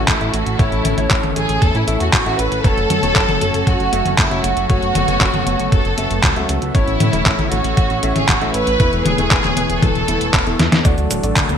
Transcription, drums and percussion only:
0.08 kick, clap, closed hi-hat
0.21 closed hi-hat
0.34 closed hi-hat
0.46 closed hi-hat
0.59 kick, closed hi-hat
0.72 closed hi-hat
0.85 closed hi-hat, high tom
0.98 closed hi-hat
1.11 kick, clap, closed hi-hat
1.23 closed hi-hat, high tom
1.36 closed hi-hat
1.49 closed hi-hat
1.62 kick, closed hi-hat
1.75 closed hi-hat
1.88 closed hi-hat
2.00 closed hi-hat
2.13 kick, clap, closed hi-hat
2.26 closed hi-hat
2.39 closed hi-hat
2.52 closed hi-hat
2.64 kick, closed hi-hat
2.78 closed hi-hat
2.90 closed hi-hat, high tom
3.03 closed hi-hat
3.16 kick, clap, closed hi-hat
3.29 closed hi-hat, high tom
3.41 closed hi-hat
3.54 closed hi-hat
3.67 kick, closed hi-hat
3.80 closed hi-hat
3.93 closed hi-hat
4.06 closed hi-hat, high tom
4.18 kick, clap, closed hi-hat
4.31 closed hi-hat
4.44 closed hi-hat
4.57 closed hi-hat
4.70 kick, closed hi-hat
4.82 closed hi-hat
4.95 closed hi-hat, high tom
5.08 closed hi-hat
5.21 kick, clap, closed hi-hat
5.34 closed hi-hat, high tom
5.47 closed hi-hat
5.59 closed hi-hat
5.72 kick, closed hi-hat
5.85 closed hi-hat
5.98 closed hi-hat
6.11 closed hi-hat
6.23 kick, clap, closed hi-hat
6.36 closed hi-hat
6.49 closed hi-hat
6.62 closed hi-hat
6.75 kick, closed hi-hat
6.88 closed hi-hat
7.00 closed hi-hat, high tom
7.13 closed hi-hat
7.26 kick, clap, closed hi-hat
7.39 closed hi-hat, high tom
7.52 closed hi-hat
7.64 closed hi-hat
7.77 kick, closed hi-hat
7.90 closed hi-hat
8.03 closed hi-hat
8.16 closed hi-hat, high tom
8.29 kick, clap, closed hi-hat
8.41 closed hi-hat
8.54 closed hi-hat
8.67 closed hi-hat
8.80 kick, closed hi-hat
8.93 closed hi-hat
9.06 closed hi-hat, high tom
9.18 closed hi-hat
9.31 kick, clap, closed hi-hat
9.44 clap, closed hi-hat, high tom
9.57 closed hi-hat
9.70 closed hi-hat
9.82 kick, closed hi-hat, high tom
9.95 closed hi-hat
10.08 closed hi-hat
10.21 closed hi-hat
10.34 kick, clap, closed hi-hat
10.47 closed hi-hat
10.60 snare, closed hi-hat
10.72 snare, closed hi-hat
10.85 kick, closed hi-hat, cabasa
10.98 closed hi-hat, cabasa
11.11 closed hi-hat, high tom, cabasa
11.23 closed hi-hat, cabasa
11.36 kick, clap, closed hi-hat, cabasa
11.49 closed hi-hat, high tom, cabasa

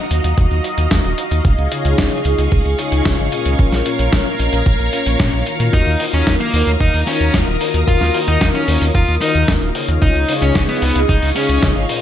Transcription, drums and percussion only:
0.11 closed hi-hat
0.24 closed hi-hat
0.38 kick, closed hi-hat
0.51 closed hi-hat
0.64 closed hi-hat
0.78 closed hi-hat
0.91 kick, snare, closed hi-hat
1.05 closed hi-hat
1.18 closed hi-hat
1.31 closed hi-hat
1.45 kick, closed hi-hat
1.58 closed hi-hat
1.72 closed hi-hat
1.85 closed hi-hat
1.98 kick, snare, closed hi-hat
2.12 closed hi-hat
2.25 closed hi-hat
2.38 closed hi-hat
2.52 kick, closed hi-hat
2.65 closed hi-hat
2.79 closed hi-hat
2.92 closed hi-hat
3.05 kick, snare, closed hi-hat
3.19 closed hi-hat
3.32 closed hi-hat
3.46 closed hi-hat
3.59 kick, closed hi-hat
3.72 snare, closed hi-hat
3.86 closed hi-hat
3.99 closed hi-hat
4.13 kick, snare, closed hi-hat
4.26 closed hi-hat
4.39 closed hi-hat
4.53 closed hi-hat
4.66 kick, closed hi-hat
4.79 closed hi-hat
4.93 closed hi-hat
5.06 closed hi-hat
5.20 kick, snare, closed hi-hat
5.33 closed hi-hat
5.46 closed hi-hat
5.60 closed hi-hat
5.73 kick, closed hi-hat
5.87 closed hi-hat
6.00 open hi-hat
6.13 closed hi-hat
6.27 kick, snare, closed hi-hat
6.40 closed hi-hat
6.54 open hi-hat
6.67 closed hi-hat
6.80 kick, closed hi-hat
6.94 open hi-hat
7.07 open hi-hat
7.21 closed hi-hat
7.34 kick, snare, closed hi-hat
7.47 closed hi-hat
7.61 open hi-hat
7.74 closed hi-hat
7.88 kick, closed hi-hat
8.01 snare, closed hi-hat
8.14 open hi-hat
8.28 closed hi-hat
8.41 kick, snare, closed hi-hat
8.55 closed hi-hat
8.68 open hi-hat
8.81 open hi-hat
8.95 kick, closed hi-hat
9.08 closed hi-hat
9.21 open hi-hat
9.35 closed hi-hat
9.48 kick, snare, closed hi-hat
9.62 closed hi-hat
9.75 open hi-hat
9.88 closed hi-hat
10.02 kick, closed hi-hat
10.15 closed hi-hat
10.29 open hi-hat
10.42 closed hi-hat
10.55 kick, snare, closed hi-hat
10.69 closed hi-hat
10.82 open hi-hat
10.96 closed hi-hat
11.09 kick, closed hi-hat
11.22 open hi-hat
11.36 open hi-hat
11.49 closed hi-hat
11.63 kick, snare, closed hi-hat
11.76 closed hi-hat
11.89 open hi-hat

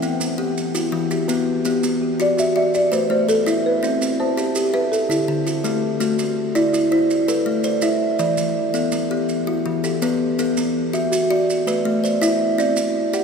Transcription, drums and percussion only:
0.02 maracas
0.21 maracas
0.57 maracas
0.75 maracas
1.11 maracas
1.29 maracas
1.65 maracas
1.83 maracas
2.20 maracas
2.38 maracas
2.74 maracas
2.93 maracas
3.29 maracas
3.47 maracas
3.84 maracas
4.02 maracas
4.38 maracas
4.55 maracas
4.93 maracas
5.11 maracas
5.47 maracas
5.65 maracas
6.01 maracas
6.19 maracas
6.56 maracas
6.74 maracas
7.10 maracas
7.29 maracas
7.64 maracas
7.81 maracas
8.19 maracas
8.37 maracas
8.75 maracas
8.92 maracas
9.29 maracas
9.84 maracas
10.02 maracas
10.39 maracas
10.57 maracas
10.94 maracas
11.13 maracas
11.50 maracas
11.68 maracas
12.05 maracas
12.23 maracas
12.60 maracas
12.76 maracas
13.13 maracas

